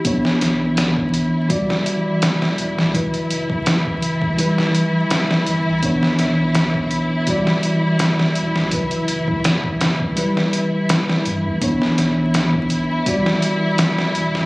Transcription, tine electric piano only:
X:1
M:4/4
L:1/8
Q:"Swing 16ths" 1/4=83
K:Bm
V:1 name="Tine electric piano"
[B,Dc]4 [G,Fd]4 | [F,EB]4 [G,EB]4 | [B,Dc]4 [G,Fd]4 | [F,EB]4 [G,EB]4 |
[B,Dc]4 [G,Fd]4 |]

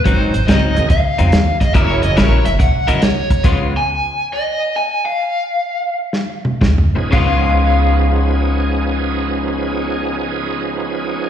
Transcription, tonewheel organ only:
X:1
M:4/4
L:1/8
Q:"Swing" 1/4=133
K:Dbmix
V:1 name="Tonewheel organ"
z3 [G,B,=CEA] z4 | [G,B,D_FA]3 z4 z | z8 | z6 z [F,CDEA] |
[F,CDEA]8- | [F,CDEA]8 |]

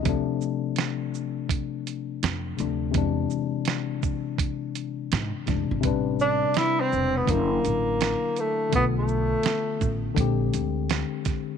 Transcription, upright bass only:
X:1
M:4/4
L:1/16
Q:"Swing 16ths" 1/4=83
K:Am
V:1 name="Upright bass" clef=bass
D,,2 z8 z2 F,,2 D,,2 | E,,2 z8 z2 ^G,, z F,,, ^G,,, | A,,,4 z2 E,,,2 ^F,,,2 A,,,3 z3 | B,,,4 z2 A,,,2 _B,,,2 D,,3 z3 |]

